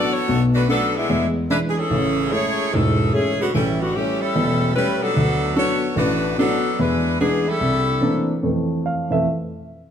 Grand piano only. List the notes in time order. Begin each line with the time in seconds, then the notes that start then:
Already playing: F#3 B3 D4
0.28 B1 B2
0.68 A3 B3 D4
1.10 E2 G#3
1.50 E3 G#3 D4
1.90 A1 C#3
2.32 G#3 A3 C#4
2.74 E1 G#2
3.14 G#3 A3 C#4
3.55 A1
3.97 G3 A3 C#4
4.35 E1 E2
4.76 G3 A3 C#4
5.16 D2
5.56 F#3 B3 D4
5.96 A1
6.38 F#3 B3 D4
6.79 E2
7.20 E3 G#3 D4
7.61 C2
8.01 E3 A3 A#3 C4 D4
8.43 F2 E3 A3
8.86 F5
9.10 F2 E3 A3 E5